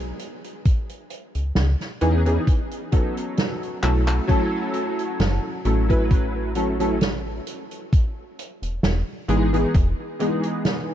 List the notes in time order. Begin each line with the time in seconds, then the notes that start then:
Already playing: B1
0.00 closed hi-hat
0.19 closed hi-hat
0.44 closed hi-hat
0.65 kick, closed hi-hat
0.89 closed hi-hat
1.10 closed hi-hat
1.35 C#2, closed hi-hat
1.55 C#2, snare, closed hi-hat
1.80 snare, closed hi-hat
2.01 E2 E3 B3 C#4 D#4 G#4, closed hi-hat
2.25 E3 B3 C#4 D#4 G#4, closed hi-hat
2.47 kick, closed hi-hat
2.71 closed hi-hat
2.92 F#3 B3 C#4 D#4 A4, kick, closed hi-hat
3.17 closed hi-hat
3.37 snare, closed hi-hat
3.63 closed hi-hat
3.83 B1 F#3 A3 C#4 E4 A4, clap, closed hi-hat
4.08 clap, closed hi-hat
4.27 F#3 A3 C#4 E4 A4, kick, closed hi-hat
4.74 closed hi-hat
4.99 closed hi-hat
5.20 F#1, snare, closed hi-hat
5.65 A1 F#3 A3 C#4 E4 A4, closed hi-hat
5.89 F#3 A3 C#4 E4 B4, kick, closed hi-hat
6.11 kick, closed hi-hat
6.55 F#3 A3 C#4 E4 A4, closed hi-hat
6.79 F#3 A3 C#4 E4 A4, closed hi-hat
7.01 snare, closed hi-hat
7.47 closed hi-hat
7.71 closed hi-hat
7.93 kick, closed hi-hat
8.39 closed hi-hat
8.62 E1, closed hi-hat
8.83 E1, snare, closed hi-hat
9.28 G#1 E3 G#3 B3 D#4 G#4, closed hi-hat
9.53 E3 G#3 B3 D#4 G#4, closed hi-hat
9.74 E1, kick, closed hi-hat
10.19 E3 G#3 B3 D#4 G#4, closed hi-hat
10.43 closed hi-hat
10.65 snare, closed hi-hat